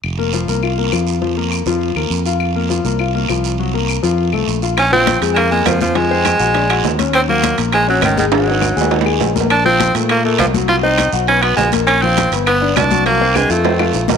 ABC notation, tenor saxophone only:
X:1
M:4/4
L:1/16
Q:1/4=203
K:Fphr
V:1 name="Tenor saxophone"
z16 | z16 | z16 | z16 |
D2 C4 z3/2 A,/2 B,2 A,2 F,2 F,2 | A,12- A,2 z2 | C2 B,4 z2 A,2 G,2 E,2 E,2 | G,8- G,2- G,/2 z4 z3/2 |
=D2 C4 z2 B,2 =A,2 F,2 z2 | F2 E4 z2 D2 =B,2 A,2 z2 | D2 C4 z2 =B,4 =D4 | B,4 A,2 =A,8 z2 |]